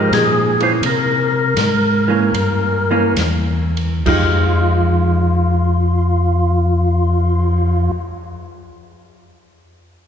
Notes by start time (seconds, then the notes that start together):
Already playing: G#2 F3 G#3 D#4 G4 A#4
0.13 A#2 G#4, snare, hi-hat pedal, ride
0.60 E3 A#3 C#4 C5, ride
0.83 C3 A#4, ride
1.57 G#2, snare, hi-hat pedal, ride
2.08 E3 A#3 C#4
2.34 G2, ride
2.91 E3 A#3 C#4
3.17 E2, snare, hi-hat pedal, ride
3.77 ride
4.06 F2 F3 G#3 D#4 F4 G4, kick, crash
4.69 cymbal swell